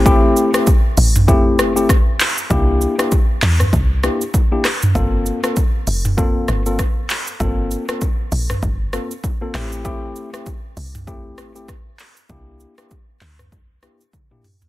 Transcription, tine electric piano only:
X:1
M:4/4
L:1/16
Q:"Swing 16ths" 1/4=98
K:Gdor
V:1 name="Tine electric piano"
[A,CEG]3 [A,CEG] z4 [A,CEG]3 [A,CEG] z4 | [B,DEG]3 [B,DEG] z6 [B,DEG] z2 [B,DEG] z2 | [B,CFA]3 [B,CFA] z4 [B,CFA]3 [B,CFA] z4 | [B,CFA]3 [B,CFA] z6 [B,CFA] z2 [B,CFA] [A,CEG]2 |
[A,CEG]3 [A,CEG] z4 [A,CEG]3 [A,CEG] z4 | [B,DEG]3 [B,DEG] z6 [B,DEG] z2 [B,DEG] z2 |]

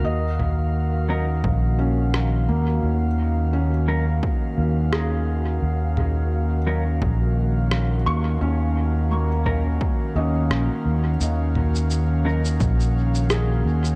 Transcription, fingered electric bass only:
X:1
M:4/4
L:1/8
Q:"Swing 16ths" 1/4=86
K:Ebm
V:1 name="Fingered electric bass" clef=bass
E,,4 B,,,3 E,, | E,,4 z E,,3 | E,,4 B,,,3 E,, | E,,4 z E,, B,,, E,, |
E,,4 B,,,3 E,, |]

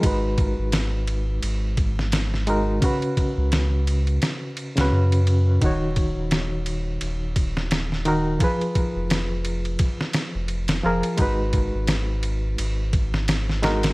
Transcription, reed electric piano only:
X:1
M:4/4
L:1/16
Q:"Swing 16ths" 1/4=86
K:Abdor
V:1 name="Reed electric piano"
[A,EGc]12- [A,EGc]2 [A,EGB]2 | [D,DGc]8- [D,DGc]3 [D,DGc]4- [D,DGc] | [E,EGd]12- [E,EGd]2 [E,EGB]2 | [F,FAc]12- [F,FAc]2 [F,FAB]2 |
[A,EGc]12- [A,EGc]2 [A,EGB]2 |]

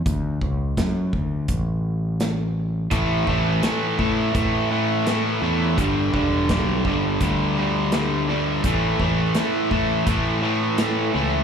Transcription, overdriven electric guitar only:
X:1
M:4/4
L:1/8
Q:1/4=84
K:D
V:1 name="Overdriven electric guitar" clef=bass
z8 | [A,,E,A,] [A,,E,A,] [A,,E,A,] [A,,E,A,] [A,,E,A,] [A,,E,A,] [A,,E,A,] [A,,E,A,] | [G,,D,G,] [G,,D,G,] [G,,D,G,] [G,,D,G,] [G,,D,G,] [G,,D,G,] [G,,D,G,] [G,,D,G,] | [A,,E,A,] [A,,E,A,] [A,,E,A,] [A,,E,A,] [A,,E,A,] [A,,E,A,] [A,,E,A,] [A,,E,A,] |]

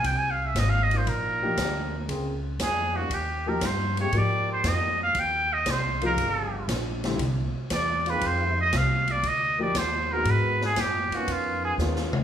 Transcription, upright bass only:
X:1
M:4/4
L:1/8
Q:"Swing" 1/4=118
K:Cm
V:1 name="Upright bass" clef=bass
C,,2 A,,,2 B,,,2 D,,2 | _D,,2 F,,2 E,,2 G,,2 | A,,2 F,,2 E,,2 C,,2 | G,,,2 B,,,2 C,, z =E,,2 |
F,,2 C,,2 D,,2 E,,2 | A,,2 _G,, z F,,2 E,,2 |]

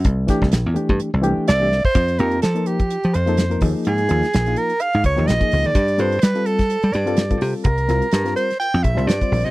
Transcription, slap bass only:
X:1
M:4/4
L:1/16
Q:"Swing 16ths" 1/4=126
K:Cmix
V:1 name="Slap bass" clef=bass
C,,2 z C,, B,,, E,, z G,, z C,,2 z C,,3 z | [K:Fmix] F,,2 F,,2 F,4- F, F, F,,4 E,, z | _A,,2 E,, z B,,,2 z3 A,, _D,, E,, B,,, z D,, E, | G,,2 G,,2 G,4- G, G, G,,4 C, z |
C,,2 C,, z G,,2 z3 F,, B,,, C,, G,, z B,,, C, |]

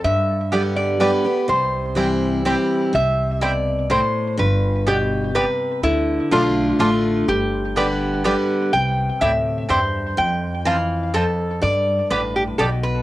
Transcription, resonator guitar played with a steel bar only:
X:1
M:3/4
L:1/8
Q:1/4=124
K:C
V:1 name="Resonator guitar played with a steel bar"
e3 d B2 | c4 G2 | e2 d2 c2 | B2 G2 B2 |
E2 F2 F2 | G2 B2 B2 | g2 e2 c2 | g2 f2 A2 |
d2 B G A B |]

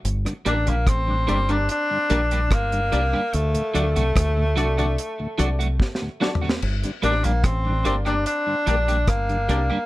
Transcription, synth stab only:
X:1
M:4/4
L:1/16
Q:1/4=73
K:Gm
V:1 name="Synth stab"
z2 [DGBd] z3 [DGBd] [DGBd] z2 [DGBd] z3 [DGBd] z | z2 [D^FAd] z3 [DFAd] [DFAd] z2 [DFAd] z3 [DFAd] z | z2 [DGBd] z3 [DGBd] [DGBd] z2 [DGBd] z3 [DGBd] z |]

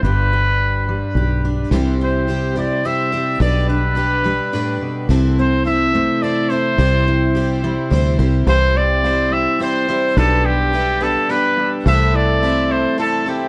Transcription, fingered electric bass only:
X:1
M:3/4
L:1/8
Q:1/4=106
K:C
V:1 name="Fingered electric bass" clef=bass
G,,,4 B,,,2 | C,,4 z2 | B,,,4 z2 | C,,4 z2 |
C,,4 D,, C,, | C,,4 z2 | B,,,4 z2 | C,,4 z2 |]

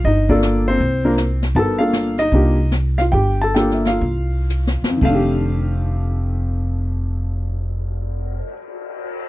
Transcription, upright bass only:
X:1
M:4/4
L:1/8
Q:"Swing" 1/4=129
K:Fmix
V:1 name="Upright bass" clef=bass
G,,,4 C,,4 | G,,,4 C,,4 | G,,,4 C,,3 z | F,,,8- |
F,,,8 |]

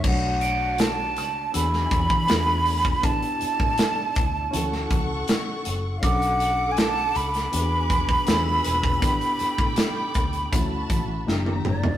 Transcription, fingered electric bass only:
X:1
M:4/4
L:1/16
Q:1/4=80
K:Bm
V:1 name="Fingered electric bass" clef=bass
B,,,6 C,,2 E,,2 E,, E, E,,4 | A,,, z2 A,, z2 D,,2 D,,2 C,,2 z2 F,,,2 | B,,,6 C,,2 E,,4 E,,2 E,,,2 | A,,, z2 A,, z2 D,,2 D,,2 A,,,2 F,,,2 F,,,2 |]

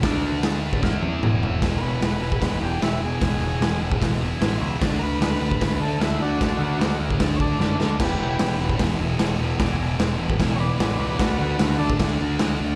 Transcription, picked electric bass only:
X:1
M:4/4
L:1/8
Q:1/4=150
K:Emix
V:1 name="Picked electric bass" clef=bass
D,,4 E,,2 E,,,2 | E,,, E,,, E,,, E,,, E,,, E,,, E,,, E,,, | E,,, E,,, E,,, E,,, E,,,2 A,,, C,, | D,, D,, D,, D,, D,, D,, D,, D,, |
D,, D,, D,, D,, D,,2 F,, D,, | E,,, E,,, E,,, E,,, E,,, E,,, E,,, E,,, | E,,, E,,, E,,, E,,, E,,,2 A,,, C,, | D,, D,, D,, D,, D,, D,, D,, D,, |]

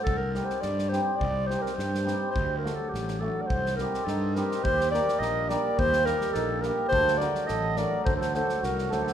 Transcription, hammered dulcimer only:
X:1
M:2/4
L:1/8
Q:1/4=105
K:none
V:1 name="Hammered dulcimer"
z [G,C_EG] z [G,CEG] | z [G,C_EG] z [G,CEG] | z [^F,A,D^F] z [F,A,DF] | z [G,C_EG] z [G,CEG] |
z [G,_B,_EG] z [G,B,EG] | z [G,_B,_EG] z [G,B,EG] | z [^F,A,D^F] z [F,A,DF] | z [^F,A,D^F] z [F,A,DF] |]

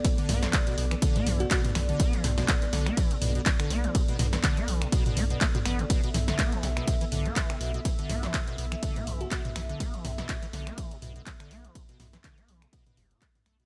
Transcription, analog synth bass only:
X:1
M:4/4
L:1/8
Q:"Swing 16ths" 1/4=123
K:Bm
V:1 name="Analog synth bass" clef=bass
z B,,, z B,,, z B,,, z B,,, | z B,,, z B,,, z B,,, z B,,, | z B,,, z B,,, z B,,, z A,,, | z B,,, z B,,, z B,,, z B,,, |
z B,,, z B,,, z B,,, z B,,, | z B,,, z B,,, z B,,, z B,,, | z B,,, z B,,, z F,,, z B,,, |]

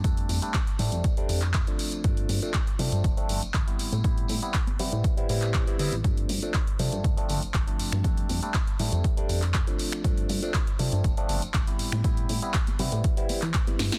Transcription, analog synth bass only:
X:1
M:4/4
L:1/16
Q:1/4=120
K:Gmix
V:1 name="Analog synth bass" clef=bass
F,,2 F,, z3 A,, F,, z F,, F,,3 z3 | G,,2 G,, z3 C, G,, G,,, z G,,, z G,,, z A,, A,, | A,,2 A,, z3 C, A,, z A,, A,,3 z D, A,,, | G,,2 G,, z3 C, G,, G,,, z G,,, z G,,, z G,, G,, |
F,,2 F,, z3 A,, F,, z F,, F,,3 z3 | G,,2 G,, z3 C, G,, G,,, z G,,, G,,, G,,, z A,, A,, | A,,2 A,, z3 C, A,, z3 E, z2 G,, z |]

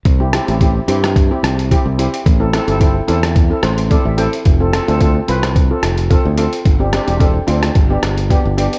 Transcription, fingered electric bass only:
X:1
M:4/4
L:1/16
Q:"Swing 16ths" 1/4=109
K:C
V:1 name="Fingered electric bass" clef=bass
C,,3 A,,,3 G,,4 C,,3 C,,2 z | A,,,3 G,,,3 E,,4 A,,,3 A,,,2 z | F,,,3 D,,3 C,,4 F,,,3 D,,2 z | G,,,3 E,,,3 D,,2 G,,,2 G,,,3 G,,,2 z |]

